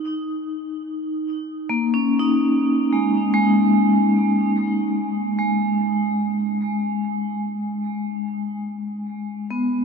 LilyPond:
\new Staff \with { instrumentName = "Vibraphone" } { \time 3/4 \key gis \minor \tempo 4 = 73 dis'2 ais16 cis'16 dis'8~ | dis'8 gis8 gis2~ | gis8 gis2~ gis8~ | gis4 r4. b8 | }